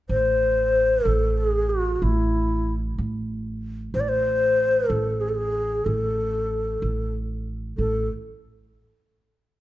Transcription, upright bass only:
0.09 A1
1.05 A1
2.02 A1
2.98 A1
3.94 A1
4.90 A1
5.86 A1
6.82 A1
7.78 A1

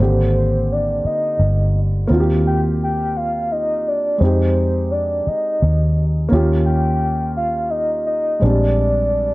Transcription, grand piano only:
Already playing: A#3
0.00 D3 C4 G4
2.07 A#3 C4 F4
2.14 F#4
2.20 G4
4.18 G#3 C4 D#4
4.24 G4
6.28 A#3 C#4
6.33 F4 G4
8.39 G#3 C4 D4
8.45 G3

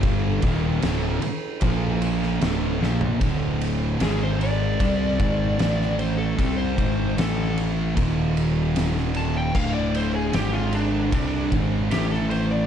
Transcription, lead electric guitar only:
4.03 G#4
4.23 C5
4.39 D5
5.99 C5
6.18 A4
6.58 C5
7.19 A4
9.17 A5
9.37 G5
9.55 F5
9.74 D5
9.95 C5
10.15 G#4
10.34 G4
10.54 F4
10.75 D4
11.14 D4
11.91 G4
12.11 A4
12.30 C5
12.51 D5

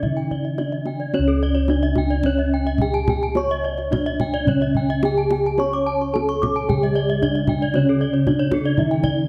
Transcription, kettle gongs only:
Already playing: C#4
0.03 C#3
0.58 D4
1.14 C#4
1.19 C#2
1.69 D4
2.81 D4
3.36 C#5
3.92 D4
4.47 C#3
5.04 D4
5.59 C#5
6.14 D4
6.69 C#3
7.22 D4
7.75 C#4
8.27 D4
8.78 C#3

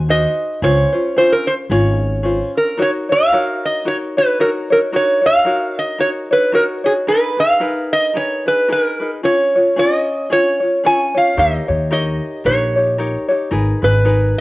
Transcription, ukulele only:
0.09 D#4 F#4 G#4 C5
0.62 C#4 F4 G#4 C5
0.92 C#4 F4 C5
1.16 C#4 F4 G#4 C5
1.71 C#4 F4 G#4
2.23 C#4 F4 G#4 C5
2.77 D#4 F#4 A#4 C#5
3.09 D#4 F#4 C#5
3.32 D#4 F#4 A#4 C#5
3.85 D#4 F#4 A#4 C#5
4.17 D#4 F#4 C#5
4.40 D#4 F#4 A#4 C#5
4.70 D#4 F#4 C#5
4.92 D#4 F#4 A#4 C#5
5.22 D#4 F#4 C#5
5.45 D#4 F#4 A#4 C#5
5.98 D#4 F#4 A#4 C#5
6.31 D#4 F#4 C#5
6.52 D#4 F#4 A#4 C#5
6.84 D#4 F#4 C#5
7.07 D#4 G#4 A#4 B4
7.37 D#4 G#4 B4
7.60 D#4 G#4 A#4 B4
8.14 D#4 G#4 A#4 B4
8.46 D#4 G#4 B4
8.68 D#4 G#4 A#4 B4
9.00 D#4 G#4 B4
9.23 C#4 F4 G#4 C#5
9.55 C#4 F4 C#5
9.76 C#4 F4 G#4 C#5
10.30 C#4 F4 G#4 C#5
10.60 C#4 F4 C#5
10.84 C#4 F4 G#4 C#5
11.14 C#4 F4 C#5
11.37 D#4 G4 A#4 C#5
11.68 D#4 G4 C#5
11.91 D#4 G4 A#4 C#5
12.45 D#4 G4 A#4 C#5
12.76 D#4 G4 C#5
12.98 D#4 G4 A#4 C#5
13.29 D#4 G4 C#5
13.51 D#4 G#4 A#4 B4
13.82 D#4 G#4 B4
14.05 D#4 G#4 A#4 B4

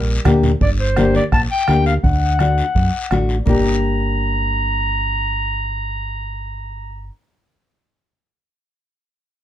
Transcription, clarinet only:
Already playing: A#4
0.62 D5
0.80 C5
1.16 D5
1.33 A5
1.51 G5
1.86 F5
2.04 F#5
3.47 A#5

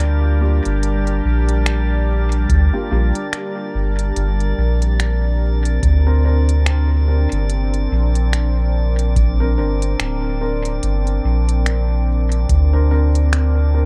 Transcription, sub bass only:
Already playing: D2
0.65 G1
1.25 A#1
2.49 D2
2.91 A#1
3.75 G1
4.16 G1
4.58 A#1
5.83 D2
7.32 G1
7.91 A#1
9.58 G1
10.00 D1
10.83 G1
11.24 A#1
12.49 D2

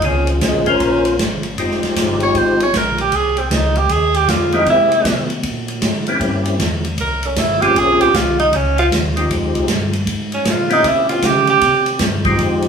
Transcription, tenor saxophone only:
0.05 C#4
0.31 F3
0.45 G#3
0.68 C#4
2.23 C#5
2.37 C5
2.63 C#5
2.77 A#4
3.01 G4
3.15 G#4
3.39 C4
3.53 D#4
3.78 G4
3.91 G#4
4.16 G4
4.29 F4
4.55 D#4
4.70 E4
7.01 A#4
7.26 C#4
7.39 E4
7.61 G4
7.78 G#4
8.01 G4
8.16 F4
8.39 D#4
8.55 C#4
8.79 F4
10.34 C#4
10.50 F4
10.73 D#4
10.88 E4
11.09 F4
11.26 G4
11.49 G4

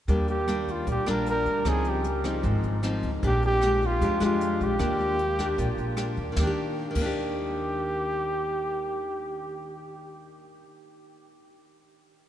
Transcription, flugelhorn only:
0.09 G4
0.30 G4
0.71 F4
0.91 G4
1.10 A#4
1.30 A#4
1.69 G#4
1.89 G4
3.27 G4
3.46 G4
3.86 F4
4.24 F4
4.64 G4
6.39 G4
6.98 G4

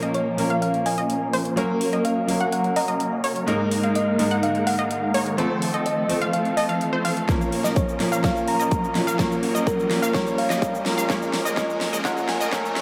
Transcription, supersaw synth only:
0.02 F3 A#3 C#4 A#4 D#5
0.50 F3 A#3 C#4 A#4 F5
0.86 F3 A#3 C#4 A#4 D#5
0.98 F3 A#3 C#4 A#4 D#5
1.33 F3 A#3 C#4 A#4 C5
1.57 F#3 A#3 C#4 A#4 C#5
1.93 F#3 A#3 C#4 A#4 D#5
2.41 F#3 A#3 C#4 A#4 F#5
2.76 F#3 A#3 C#4 A#4 D#5
2.88 F#3 A#3 C#4 A#4 D#5
3.24 F#3 A#3 C#4 A#4 C#5
3.48 G#3 A#3 D#4 A#4 D#5
3.83 G#3 A#3 D#4 A#4 F5
4.31 G#3 A#3 D#4 A#4 F#5
4.67 G#3 A#3 D#4 A#4 F5
4.79 G#3 A#3 D#4 A#4 F5
5.14 G#3 A#3 D#4 A#4 C#5
5.38 F3 A3 C4 A4 C5
5.74 F3 A3 C4 A4 D#5
6.21 F3 A3 C4 A4 F5
6.57 F3 A3 C4 A4 D#5
6.69 F3 A3 C4 A4 F5
6.93 F3 A3 C4 A4 C5
7.05 F3 A3 C4 A4 F5
7.29 F3 A#3 C#4 A#4 C#5
7.64 F3 A#3 C#4 A#4 D#5
8.12 F3 A#3 C#4 A#4 F5
8.24 F3 A#3 C#4 A#4 C#5
8.60 F3 A#3 C#4 A#4 D#5
9.07 F3 A#3 C#4 A#4 F5
9.19 F3 A#3 C#4 A#4 C#5
9.55 F3 A#3 C#4 A#4 D#5
10.02 F3 A#3 C#4 A#4 F5
10.14 F3 A#3 C#4 A#4 C#5
10.50 F3 A#3 C#4 A#4 D#5
10.98 F3 A#3 C#4 A#4 F5
11.09 F3 A#3 C#4 A#4 C#5
11.45 F3 A#3 C#4 A#4 D#5
11.57 F3 A#3 C#4 A#4
11.93 F3 A#3 C#4 A#4 D#5
12.05 F3 A#3 C#4 A#4 C#5
12.41 F3 A#3 C#4 A#4 D#5
12.52 F3 A#3 C#4

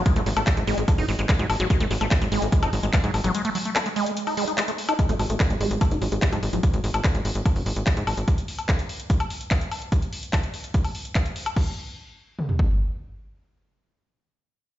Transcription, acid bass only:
0.06 G#3
0.16 A3
0.26 F#3
0.37 A3
0.47 B3
0.57 G#3
0.67 G#3
0.78 A3
0.98 D#4
1.08 F#3
1.19 G#3
1.29 G#3
1.39 F#3
1.60 F#3
1.70 G#3
1.80 A3
1.91 F#3
2.01 A3
2.11 B3
2.21 G#3
2.32 G#3
2.42 A3
2.63 D#4
2.73 F#3
2.83 G#3
2.93 G#3
3.04 F#3
3.24 F#3
3.35 G#3
3.45 A3
3.55 F#3
3.65 A3
3.76 B3
3.86 G#3
3.96 G#3
4.06 A3
4.27 D#4
4.37 G#3
4.48 D#4
4.58 G#3
4.68 A3
4.89 D#4
4.99 G#3
5.09 A3
5.20 F#3
5.30 A3
5.40 B3
5.50 G#3
5.61 G#3
5.71 A3
5.91 D#4
6.02 F#3
6.12 G#3
6.22 G#3
6.32 F#3
6.53 F#3

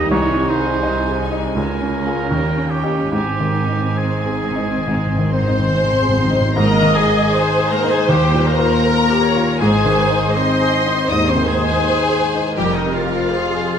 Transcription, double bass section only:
Already playing: D#2
0.12 C2
1.57 C#2
2.32 D#2
3.13 G#1
6.58 G#1
8.10 D#2
9.61 G#1
11.11 D#2
12.58 F1

